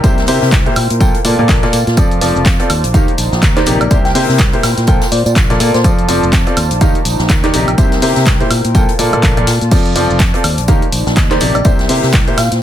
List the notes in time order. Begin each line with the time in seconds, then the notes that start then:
Already playing: A#4 D5 G5
0.04 C2 C3 A#3 E4 G4 C5, kick, closed hi-hat, tambourine
0.18 snare, closed hi-hat
0.23 C5, open hi-hat
0.28 C3 A#3 E4 G4 C5, open hi-hat
0.42 C3, snare
0.52 C2, kick, snare, clap, closed hi-hat, tambourine
0.66 A#2 A#3 E4 G4 C5, closed hi-hat
0.76 A#2 F4, open hi-hat, tambourine, high woodblock
0.90 A#2, closed hi-hat
1.00 A#1 A#2 A#3 F4 A4 G5, kick, closed hi-hat, tambourine
1.11 D5, closed hi-hat
1.25 A#2 A#3 F4 A4 D5, open hi-hat, tambourine
1.32 A5
1.39 A#2 A#3 F4 A4 D5
1.49 A#1, kick, snare, clap, open hi-hat, tambourine
1.63 A#2 A#3 F4 A4 D5, snare, closed hi-hat
1.73 A#2, open hi-hat, tambourine
1.87 A#2, snare, closed hi-hat
1.97 F2 F3 C4 F4 A4 D5, kick, closed hi-hat, tambourine, shaker
2.11 closed hi-hat, shaker
2.21 F1 F3 C4 F4 A4 C5 D5, open hi-hat, tambourine, shaker
2.36 F1, shaker
2.46 F2, kick, snare, clap, closed hi-hat, tambourine, shaker
2.60 C4 F4 A4 D5, closed hi-hat, shaker
2.70 D#2 D#4, open hi-hat, tambourine, high woodblock, shaker
2.84 A#1, closed hi-hat, shaker
2.94 D#2 D#3 A#3 D#4 G4 F5, kick, closed hi-hat, tambourine, shaker
3.08 closed hi-hat, shaker
3.13 A#4
3.18 A#1, open hi-hat, tambourine, shaker
3.25 G5
3.32 A#1, snare, shaker
3.42 D#2, kick, snare, clap, closed hi-hat, tambourine, shaker
3.56 D#3 A#3 D#4 G4 C5 D5, snare, clap, closed hi-hat, shaker
3.66 A#1 C3 A#3 D#4 G4 D5, open hi-hat, tambourine, shaker
3.81 A#1 D5, closed hi-hat, high woodblock, shaker
3.91 C2 C3 A#3 E4 G4 C5, kick, closed hi-hat, tambourine, shaker
4.05 G5, snare, closed hi-hat, shaker
4.15 C3 A#3 E4 G4 C5 G5, open hi-hat, shaker
4.25 C3 C5, snare
4.30 shaker
4.39 C2, kick, snare, clap, closed hi-hat, tambourine, shaker
4.53 A#2 A#3 E4 G4 C5, closed hi-hat, shaker
4.63 A#2 F4, snare, open hi-hat, tambourine, high woodblock, shaker
4.77 A#2, snare, closed hi-hat, shaker
4.87 A#1 A#2 A#3 F4 A4 G5, kick, closed hi-hat, tambourine, shaker
5.01 snare, closed hi-hat, tambourine, shaker
5.12 A#2 D5, snare, open hi-hat, shaker
5.19 D5 A5
5.26 A#2 D5, tambourine, shaker
5.35 A#1, kick, snare, clap, closed hi-hat, tambourine, shaker
5.50 A#2 A#3 F4 A4 D5, snare, closed hi-hat, shaker
5.60 A#2 A#3 F4 A4 D5, open hi-hat, tambourine, shaker
5.74 A#2 C5, snare, closed hi-hat, shaker
5.84 F2 F3 C4 F4 A4 D5, kick, closed hi-hat, tambourine, shaker
5.99 closed hi-hat, shaker
6.08 F1 F3 C4 F4 A4 D5, open hi-hat, tambourine, shaker
6.19 F1 C5
6.23 shaker
6.33 F2, kick, snare, clap, closed hi-hat, tambourine, shaker
6.46 C4 F4 A4 D5, closed hi-hat, shaker
6.57 D#2 D#4, open hi-hat, tambourine, high woodblock, shaker
6.71 A#1, closed hi-hat, shaker
6.81 D#2 D#3 A#3 D#4 G4 F5, kick, closed hi-hat, tambourine, shaker
6.95 closed hi-hat, shaker
7.00 A#4
7.05 A#1, open hi-hat, tambourine, shaker
7.13 G5
7.19 A#1, snare, shaker
7.29 D#2, kick, snare, clap, closed hi-hat, tambourine, shaker
7.44 D#3 A#3 D#4 G4 D5, snare, clap, closed hi-hat, shaker
7.54 A#1 C3 A#3 D#4 G4 D5, open hi-hat, tambourine, shaker
7.68 A#1, closed hi-hat, high woodblock, shaker
7.78 C2 C3 A#3 E4 G4 C5, kick, closed hi-hat, tambourine, shaker
7.92 snare, closed hi-hat, shaker
8.02 C3 A#3 E4 G4 C5, open hi-hat, shaker
8.12 C5
8.16 C3, snare, closed hi-hat, shaker
8.26 C2, kick, snare, clap, closed hi-hat, tambourine, shaker
8.40 A#2 A#3 E4 G4 C5, closed hi-hat, shaker
8.50 A#2 F4, open hi-hat, tambourine, high woodblock, shaker
8.64 A#2, closed hi-hat, shaker
8.75 A#1 A#2 A#3 F4 A4 G5, kick, closed hi-hat, tambourine, shaker
8.88 D5, closed hi-hat, shaker
8.99 A#2 A#3 F4 A4 D5, open hi-hat, tambourine, shaker
9.06 A5
9.13 A#2 A#3 F4 A4 D5, closed hi-hat, high woodblock, shaker
9.23 A#1, kick, clap, open hi-hat, tambourine, shaker
9.37 A#2 A#3 F4 A4 D5, closed hi-hat, shaker
9.47 A#2, snare, open hi-hat, tambourine, shaker
9.61 A#2, closed hi-hat, shaker
9.71 F2 F3 C4 F4 A4 D5, kick, closed hi-hat, tambourine, crash, shaker
9.86 closed hi-hat, shaker
9.96 F1 F3 C4 F4 A4 D5, open hi-hat, tambourine, shaker
10.05 C5
10.10 F1, shaker
10.19 kick, snare, clap, closed hi-hat, tambourine, shaker
10.34 C4 F4 A4 D5, closed hi-hat, shaker
10.44 D#2 D#4, open hi-hat, tambourine, high woodblock, shaker
10.58 A#1, closed hi-hat, shaker
10.68 D#2 D#3 A#3 D#4 G4 F5, kick, closed hi-hat, tambourine, shaker
10.82 A#4, closed hi-hat, shaker
10.92 A#1, open hi-hat, tambourine, shaker
11.00 G5
11.07 A#1, snare, shaker
11.16 D#2, kick, snare, clap, closed hi-hat, tambourine, shaker
11.31 D#3 A#3 D#4 G4 C5 D5, snare, clap, closed hi-hat, shaker
11.40 A#1 C3 A#3 D#4 G4 D5, open hi-hat, tambourine, shaker
11.55 A#1 D5, closed hi-hat, high woodblock, shaker
11.65 C2 C3 A#3 E4 G4 C5, kick, closed hi-hat, tambourine, shaker
11.79 snare, closed hi-hat, shaker
11.89 C3 A#3 E4 G4 C5, open hi-hat, shaker
11.99 C5
12.03 C3, snare, shaker
12.13 C2, kick, snare, clap, closed hi-hat, tambourine, shaker
12.28 A#2 A#3 E4 G4 C5, closed hi-hat, shaker
12.38 A#2 F4 F5, snare, open hi-hat, tambourine, high woodblock, shaker
12.52 A#2, snare, closed hi-hat, shaker